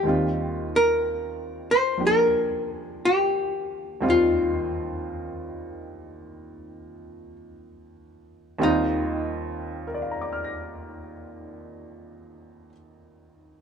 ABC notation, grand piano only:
X:1
M:4/4
L:1/8
Q:"Swing" 1/4=53
K:Eb
V:1 name="Grand piano"
z8 | z8 | z2 [Bdfbd'f'b']6 |]
V:2 name="Grand piano" clef=bass
[E,,E,G,CF]4 [F,B,DG]4 | [E,,E,G,CF]8 | [E,,E,G,CF]8 |]